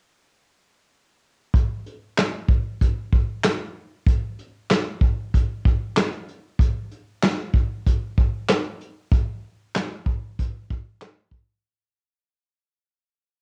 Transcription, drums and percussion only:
1.54 kick, closed hi-hat
1.86 closed hi-hat
2.18 snare, clap, closed hi-hat
2.48 kick
2.81 kick, closed hi-hat
3.13 kick
3.44 snare, clap, closed hi-hat
4.07 kick, closed hi-hat
4.39 closed hi-hat
4.71 snare, clap, closed hi-hat
5.01 kick
5.34 kick, closed hi-hat
5.65 kick
5.96 snare, clap, closed hi-hat
6.28 closed hi-hat
6.59 kick, closed hi-hat
6.91 closed hi-hat
7.23 snare, clap, closed hi-hat
7.54 kick
7.86 kick, closed hi-hat
8.18 kick
8.48 snare, clap, closed hi-hat
8.81 closed hi-hat
9.12 kick, closed hi-hat
9.76 snare, clap, closed hi-hat
10.06 kick
10.39 kick, closed hi-hat
10.70 kick
11.01 snare, clap, closed hi-hat
11.31 kick

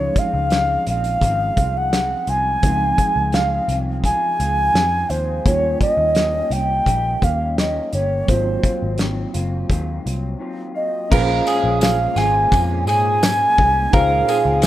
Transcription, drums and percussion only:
0.16 kick, closed hi-hat
0.50 snare, closed hi-hat
0.87 closed hi-hat
1.04 closed hi-hat
1.21 kick, closed hi-hat
1.57 kick, closed hi-hat
1.93 snare, closed hi-hat
2.27 closed hi-hat
2.63 kick, closed hi-hat
2.98 kick, closed hi-hat
3.32 snare, closed hi-hat
3.69 closed hi-hat
4.04 kick, closed hi-hat
4.40 closed hi-hat
4.75 snare, closed hi-hat
5.10 closed hi-hat
5.46 kick, closed hi-hat
5.81 kick, closed hi-hat
6.15 snare, closed hi-hat
6.51 closed hi-hat
6.86 kick, closed hi-hat
7.22 kick, closed hi-hat
7.58 snare, closed hi-hat
7.93 closed hi-hat
8.28 kick, closed hi-hat
8.63 kick, closed hi-hat
8.98 snare, closed hi-hat
9.34 closed hi-hat
9.70 kick, closed hi-hat
10.07 closed hi-hat
11.12 kick, crash
11.47 ride, tambourine
11.81 snare, ride, tambourine
12.16 snare, ride, tambourine
12.52 kick, ride, tambourine
12.87 ride, tambourine
13.23 snare, ride, tambourine
13.58 kick, ride
13.93 kick, ride, tambourine
14.28 ride, tambourine
14.62 snare, ride, tambourine

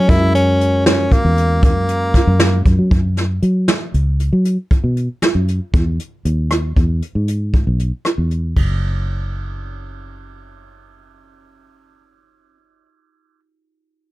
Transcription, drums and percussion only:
0.09 kick, closed hi-hat
0.35 closed hi-hat
0.61 closed hi-hat
0.86 snare, closed hi-hat
1.12 kick, closed hi-hat
1.37 closed hi-hat
1.63 kick, closed hi-hat
1.88 closed hi-hat
2.14 kick, snare, closed hi-hat
2.40 snare, closed hi-hat
2.65 kick, closed hi-hat
2.91 kick, closed hi-hat
3.17 snare, closed hi-hat
3.42 closed hi-hat
3.68 snare, closed hi-hat
3.94 closed hi-hat
4.20 closed hi-hat
4.45 closed hi-hat
4.71 kick, closed hi-hat
4.97 closed hi-hat
5.22 snare, closed hi-hat
5.48 closed hi-hat
5.73 kick, closed hi-hat
6.00 closed hi-hat
6.25 closed hi-hat
6.51 cross-stick, closed hi-hat
6.76 kick, closed hi-hat
7.02 closed hi-hat
7.28 closed hi-hat
7.54 kick, closed hi-hat
7.79 closed hi-hat
8.05 cross-stick, closed hi-hat
8.31 closed hi-hat
8.56 kick, ride

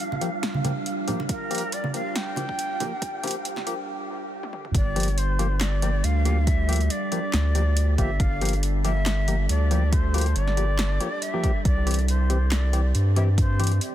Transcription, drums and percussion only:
0.12 muted conga
0.21 closed hi-hat
0.43 snare, closed hi-hat
0.54 high conga
0.65 closed hi-hat, high conga
0.86 closed hi-hat
1.08 closed hi-hat, low conga
1.20 muted conga
1.29 kick, closed hi-hat
1.51 closed hi-hat
1.55 closed hi-hat
1.58 closed hi-hat
1.72 closed hi-hat
1.84 high conga
1.94 closed hi-hat
2.16 snare, closed hi-hat
2.36 closed hi-hat, high conga
2.49 kick
2.59 closed hi-hat
2.80 closed hi-hat, muted conga, low conga
3.02 kick, closed hi-hat
3.23 closed hi-hat, muted conga
3.27 closed hi-hat
3.31 closed hi-hat
3.45 closed hi-hat
3.56 snare, muted conga
3.67 closed hi-hat
4.43 high tom
4.53 mid tom
4.65 mid tom
4.75 kick, closed hi-hat
4.96 closed hi-hat
5.00 closed hi-hat
5.03 closed hi-hat
5.08 closed hi-hat
5.18 closed hi-hat
5.39 closed hi-hat
5.61 snare, clap, closed hi-hat
5.82 closed hi-hat
6.04 closed hi-hat
6.25 closed hi-hat
6.47 kick, closed hi-hat
6.69 closed hi-hat
6.73 closed hi-hat
6.76 closed hi-hat
6.81 closed hi-hat
6.90 closed hi-hat
7.12 closed hi-hat
7.34 snare, clap, closed hi-hat
7.55 closed hi-hat
7.77 closed hi-hat
7.98 kick, closed hi-hat
8.20 kick, closed hi-hat
8.41 closed hi-hat
8.45 closed hi-hat
8.49 closed hi-hat
8.53 closed hi-hat
8.63 closed hi-hat
8.85 closed hi-hat
9.06 snare, clap, closed hi-hat
9.28 closed hi-hat
9.49 closed hi-hat
9.71 closed hi-hat
9.92 kick, closed hi-hat
10.14 closed hi-hat
10.18 closed hi-hat
10.21 closed hi-hat
10.36 closed hi-hat
10.48 snare
10.57 closed hi-hat
10.79 snare, clap, closed hi-hat
11.00 closed hi-hat
11.22 closed hi-hat
11.44 kick, closed hi-hat
11.65 kick, closed hi-hat
11.87 closed hi-hat
11.91 closed hi-hat
11.94 closed hi-hat
11.99 closed hi-hat
12.08 closed hi-hat
12.30 closed hi-hat
12.52 snare, clap, closed hi-hat
12.73 closed hi-hat
12.95 closed hi-hat
13.16 closed hi-hat
13.38 kick, closed hi-hat
13.60 closed hi-hat
13.64 closed hi-hat
13.67 closed hi-hat
13.71 closed hi-hat
13.81 closed hi-hat

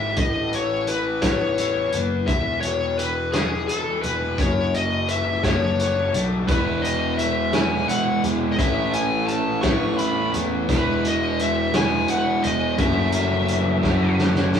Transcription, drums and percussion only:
0.16 kick, closed hi-hat
0.53 closed hi-hat
0.87 closed hi-hat
1.22 kick, snare, closed hi-hat
1.58 closed hi-hat
1.92 closed hi-hat
2.28 kick, closed hi-hat
2.62 closed hi-hat
2.99 closed hi-hat
3.33 snare, closed hi-hat
3.69 closed hi-hat
4.03 closed hi-hat
4.38 kick, closed hi-hat
4.74 closed hi-hat
5.08 closed hi-hat
5.43 kick, snare, closed hi-hat
5.79 closed hi-hat
6.14 closed hi-hat
6.48 kick, closed hi-hat
6.84 closed hi-hat
7.19 closed hi-hat
7.53 snare, closed hi-hat
7.89 closed hi-hat
8.24 closed hi-hat
8.59 kick, closed hi-hat
8.93 closed hi-hat
9.28 closed hi-hat
9.63 kick, snare, closed hi-hat
9.99 closed hi-hat
10.34 closed hi-hat
10.69 kick, closed hi-hat
11.05 closed hi-hat
11.39 closed hi-hat
11.74 snare, closed hi-hat
12.08 closed hi-hat
12.44 closed hi-hat
12.78 kick, closed hi-hat
13.12 closed hi-hat
13.48 closed hi-hat
13.83 kick, snare
14.19 snare
14.35 snare
14.53 snare

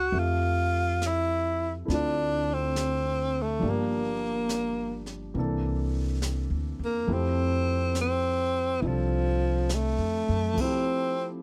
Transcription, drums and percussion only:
0.15 brush sweep
1.02 snare, hi-hat pedal
1.90 brush sweep, snare
2.76 snare, hi-hat pedal
3.63 brush sweep
4.49 snare, hi-hat pedal
5.06 snare
5.35 brush sweep
6.22 snare, hi-hat pedal
7.08 brush sweep
7.95 snare, hi-hat pedal
8.82 brush sweep
9.69 snare, hi-hat pedal
10.57 kick, crash

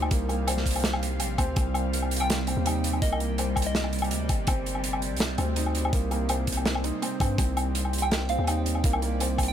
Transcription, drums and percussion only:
0.02 low woodblock
0.11 kick, closed hi-hat
0.29 closed hi-hat, low woodblock
0.47 closed hi-hat, low woodblock
0.57 snare
0.66 kick, closed hi-hat
0.71 closed hi-hat
0.76 closed hi-hat, low woodblock
0.80 snare, closed hi-hat
0.84 closed hi-hat
0.93 low woodblock
1.03 closed hi-hat
1.20 closed hi-hat, low woodblock
1.38 kick, closed hi-hat, low woodblock
1.56 kick, closed hi-hat, low woodblock
1.74 closed hi-hat, low woodblock
1.93 closed hi-hat
2.02 low woodblock
2.11 closed hi-hat
2.16 closed hi-hat
2.21 low woodblock
2.30 snare, closed hi-hat
2.47 closed hi-hat, low woodblock
2.66 closed hi-hat, low woodblock
2.84 closed hi-hat
2.93 low woodblock
3.02 kick, closed hi-hat
3.13 low woodblock
3.20 closed hi-hat
3.38 closed hi-hat, low woodblock
3.56 kick, closed hi-hat, low woodblock
3.62 closed hi-hat
3.75 snare, closed hi-hat
3.84 low woodblock
3.93 closed hi-hat
3.99 closed hi-hat, low woodblock
4.04 closed hi-hat
4.11 closed hi-hat
4.29 kick, closed hi-hat, low woodblock
4.47 kick, closed hi-hat, low woodblock
4.66 closed hi-hat
4.75 low woodblock
4.84 closed hi-hat
4.93 low woodblock
5.02 closed hi-hat
5.17 closed hi-hat, low woodblock
5.20 snare, closed hi-hat
5.38 closed hi-hat, low woodblock
5.56 closed hi-hat
5.66 low woodblock
5.75 closed hi-hat
5.85 low woodblock
5.93 kick, closed hi-hat
6.11 closed hi-hat, low woodblock
6.29 closed hi-hat, low woodblock
6.47 kick, closed hi-hat
6.52 closed hi-hat
6.57 low woodblock
6.65 snare, closed hi-hat
6.75 low woodblock
6.84 closed hi-hat
7.02 closed hi-hat, low woodblock
7.20 kick, closed hi-hat, low woodblock
7.38 kick, closed hi-hat, low woodblock
7.57 closed hi-hat, low woodblock
7.75 closed hi-hat
7.85 low woodblock
7.93 closed hi-hat
7.98 closed hi-hat
8.03 low woodblock
8.11 snare, closed hi-hat
8.29 closed hi-hat, low woodblock
8.35 low woodblock
8.39 low woodblock
8.44 closed hi-hat, low woodblock
8.48 low woodblock
8.66 closed hi-hat
8.75 low woodblock
8.84 kick, closed hi-hat
8.93 low woodblock
9.02 closed hi-hat
9.20 closed hi-hat, low woodblock
9.38 kick, closed hi-hat, low woodblock
9.43 closed hi-hat

